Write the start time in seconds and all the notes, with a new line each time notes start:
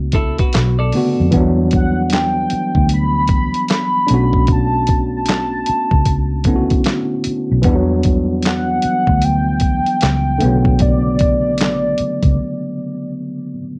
Already playing: C#2 A3 B3 D4 F#4
0.12 E4 A4, kick, closed hi-hat
0.38 F#4 B4, kick, closed hi-hat
0.53 B1, snare, clap, closed hi-hat
0.79 A4 D5
0.92 C#3 D3 A3 B3, open hi-hat
0.97 F#4
1.20 F2
1.31 E2 E3 G3 B3, kick, closed hi-hat
1.36 F#3 D4
1.71 kick, closed hi-hat
1.75 F#5
2.10 G5, snare, clap, closed hi-hat
2.50 muted fingered electric bass stroke, closed hi-hat
2.75 D2, kick
2.89 closed hi-hat
2.94 B5
3.28 kick, closed hi-hat
3.54 closed hi-hat
3.68 snare, clap, closed hi-hat
3.73 B5
4.07 B1 A3 B3 D4, closed hi-hat
4.12 C#4 F#4
4.33 kick
4.47 kick, closed hi-hat
4.52 A5
4.87 kick, closed hi-hat
5.17 A5
5.26 snare, clap, closed hi-hat
5.66 muted fingered electric bass stroke, closed hi-hat
5.91 C#2, kick
6.05 kick, closed hi-hat
6.44 D3 A3 B3 C#4, kick, closed hi-hat
6.49 E4
6.56 F#4
6.70 kick, closed hi-hat
6.84 snare, clap, closed hi-hat
7.24 muted fingered electric bass stroke, closed hi-hat
7.51 B1
7.62 E2 E3 G3 B3, kick, closed hi-hat
7.67 D4 E4
7.75 F#3
8.03 kick, closed hi-hat
8.43 F#5, snare, clap, closed hi-hat
8.82 muted fingered electric bass stroke, closed hi-hat
9.07 D2, kick
9.22 G5, closed hi-hat
9.60 kick, closed hi-hat
9.86 closed hi-hat
10.01 C#2, snare, clap, closed hi-hat
10.38 D3 A3 B3, closed hi-hat
10.43 B1 C#3 F#3
10.65 kick
10.79 D5, kick, closed hi-hat
11.19 kick, closed hi-hat
11.58 snare, clap, closed hi-hat
11.98 muted fingered electric bass stroke, closed hi-hat
12.23 C#2, kick, closed hi-hat